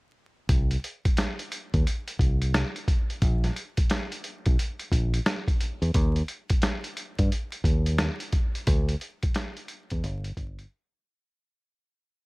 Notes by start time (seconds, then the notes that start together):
0.49 C2, kick, closed hi-hat
0.71 closed hi-hat
0.84 closed hi-hat
1.05 kick, closed hi-hat
1.17 snare, closed hi-hat
1.39 closed hi-hat
1.52 closed hi-hat
1.74 D#2, kick, closed hi-hat
1.87 closed hi-hat
2.08 closed hi-hat
2.19 C2, kick, closed hi-hat
2.42 closed hi-hat
2.54 snare, closed hi-hat
2.76 closed hi-hat
2.88 kick, closed hi-hat
3.10 closed hi-hat
3.22 A#1, kick, closed hi-hat
3.44 snare, closed hi-hat
3.56 closed hi-hat
3.77 kick, closed hi-hat
3.90 snare, closed hi-hat
4.12 closed hi-hat
4.24 closed hi-hat
4.46 B1, kick, closed hi-hat
4.59 closed hi-hat
4.79 closed hi-hat
4.92 A#1, kick, closed hi-hat
5.14 closed hi-hat
5.26 snare, closed hi-hat
5.48 kick, closed hi-hat
5.61 closed hi-hat
5.82 E2, closed hi-hat
5.94 D#2, kick, closed hi-hat
6.16 closed hi-hat
6.28 closed hi-hat
6.50 kick, closed hi-hat
6.62 snare, closed hi-hat
6.84 closed hi-hat
6.97 closed hi-hat
7.19 G2, kick, closed hi-hat
7.32 closed hi-hat
7.52 closed hi-hat
7.64 D#2, kick, closed hi-hat
7.86 closed hi-hat
7.98 snare, closed hi-hat
8.20 closed hi-hat
8.33 kick, closed hi-hat
8.55 closed hi-hat
8.67 D2, kick, closed hi-hat
8.89 closed hi-hat
9.01 closed hi-hat
9.23 kick, closed hi-hat
9.34 snare, closed hi-hat
9.57 closed hi-hat
9.68 closed hi-hat
9.90 E2, kick, closed hi-hat
10.04 G1, closed hi-hat
10.24 closed hi-hat
10.37 G1, kick, closed hi-hat
10.59 closed hi-hat